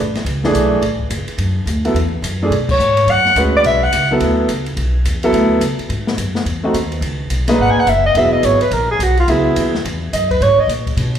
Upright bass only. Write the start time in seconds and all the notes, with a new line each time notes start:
Already playing: A1
0.25 C#2
0.54 B1
0.82 A1
1.10 F#1
1.28 muted upright bass stroke
1.38 F#2
1.66 D2
1.94 E2
2.22 F#2
2.50 B2
2.79 G#2
3.07 F#2
3.35 D2
3.64 B1
3.93 C#2
4.21 D2
4.49 C#2
4.77 B1
5.05 E2
5.33 D2
5.60 C#2
5.79 muted upright bass stroke
5.89 G#2
6.17 F#2
6.45 E2
6.74 D#2
7.01 C#2
7.30 B1
7.58 G#1
7.75 muted upright bass stroke
7.86 F#1
8.15 E1
8.43 G#1
8.61 muted upright bass stroke
8.71 A#1
8.99 B1
9.28 C#2
9.56 D#2
9.85 E2
10.13 F#2
10.40 G#2
10.58 muted upright bass stroke
10.67 A#2
10.97 B2